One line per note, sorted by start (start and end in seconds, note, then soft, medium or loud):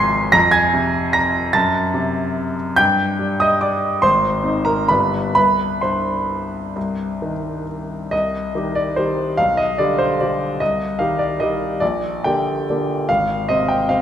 0.00 0.29 G#1 medium
0.00 0.35 G#2 medium
0.00 0.33 F3 medium
0.00 0.36 G#5 medium
0.00 0.33 A#5 medium
0.00 0.30 C6 medium
0.00 0.35 G#6 loud
0.00 0.32 A#6 loud
0.00 0.32 C7 loud
0.32 1.51 F2 medium
0.32 0.51 A#5 medium
0.32 0.52 A#6 loud
0.51 1.11 G#5 medium
0.51 1.14 G#6 loud
0.74 1.54 C3 medium
1.13 1.51 A#5 medium
1.13 1.53 A#6 loud
1.53 2.74 F#2 medium
1.53 2.53 A5 medium
1.53 2.56 A6 loud
1.94 2.78 C3 medium
2.76 3.99 G2 medium
2.76 3.37 G5 medium
2.76 3.40 G6 loud
3.19 4.03 G3 soft
3.40 3.61 D#5 medium
3.40 3.61 D#6 medium
3.61 4.00 D5 medium
3.61 4.02 D6 medium
4.02 4.87 G#1 medium
4.02 4.62 C5 medium
4.02 4.65 C6 medium
4.43 4.85 C4 soft
4.43 4.85 D#4 soft
4.65 4.88 A#4 medium
4.65 4.89 A#5 medium
4.88 5.35 G1 medium
4.88 5.34 G3 soft
4.88 5.34 G4 soft
4.88 5.33 B4 medium
4.88 5.33 B5 medium
5.35 6.72 C2 medium
5.35 5.79 B4 medium
5.35 5.82 B5 medium
5.81 7.31 G2 soft
5.81 7.64 C5 medium
5.81 7.67 C6 medium
6.76 8.08 C2 medium
7.22 8.13 D#3 soft
8.11 8.53 C2 medium
8.11 8.76 D#5 medium
8.55 8.93 D#3 soft
8.55 8.94 G3 soft
8.55 8.94 G4 soft
8.75 8.97 D5 medium
8.96 9.34 D#3 soft
8.96 9.34 G3 soft
8.96 9.35 G4 soft
8.96 9.38 C5 medium
9.37 9.78 B1 soft
9.37 9.58 F5 medium
9.57 9.78 D#5 medium
9.78 10.17 D3 soft
9.78 10.17 G3 soft
9.78 10.17 G4 soft
9.78 9.99 D5 medium
9.98 10.20 C5 medium
10.20 10.57 D3 soft
10.20 10.58 G3 soft
10.20 10.58 G4 soft
10.20 10.61 D5 medium
10.60 10.99 C2 medium
10.60 10.99 D#5 medium
10.99 11.36 D#3 soft
10.99 11.37 G3 soft
10.99 11.37 G4 soft
10.99 11.19 F5 medium
11.19 11.40 D5 medium
11.40 11.78 D#3 soft
11.40 11.78 G3 soft
11.40 11.78 G4 soft
11.40 11.81 D#5 medium
11.80 12.24 A#1 medium
11.80 12.25 D5 medium
12.24 12.64 D3 soft
12.24 12.65 A#3 soft
12.24 12.65 G4 soft
12.24 13.08 G5 medium
12.70 13.05 D3 soft
12.70 13.05 A#3 soft
12.70 13.06 G4 soft
13.09 13.48 G#1 soft
13.09 13.48 F5 medium
13.49 13.86 C3 soft
13.49 13.86 C4 soft
13.49 13.86 C5 soft
13.49 13.69 D#5 medium
13.69 13.89 G5 medium
13.89 14.02 C3 soft
13.89 14.02 C4 soft
13.89 14.02 C5 soft
13.89 14.02 F5 medium